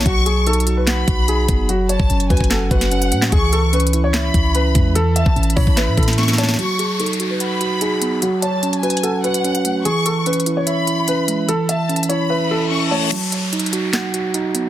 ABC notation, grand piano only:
X:1
M:4/4
L:1/16
Q:1/4=147
K:Bmix
V:1 name="Grand piano"
F2 G2 A3 B4- B G4 | F2 c4 B2 A2 B6 | G2 A2 B3 c4- c B4 | A2 e4 c2 B2 A4 c2 |
F2 G2 A3 B4- B G4 | F2 c4 B2 A2 B6 | G2 A2 B3 c4- c B4 | A2 e4 c2 B2 A4 c2 |
z16 |]